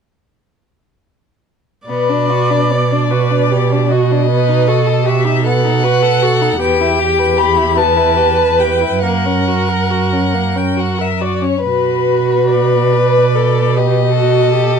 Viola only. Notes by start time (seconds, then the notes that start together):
1.87 D5
3.11 B4
3.50 G4
3.89 F#4
4.29 B4
4.68 A4
5.06 G4
5.45 A4
5.84 B4
6.24 A4
6.62 G4
7.77 B4
9.03 A#4
11.66 F#4
12.93 B4
13.36 A4
13.77 G4
14.16 F#4
14.54 G4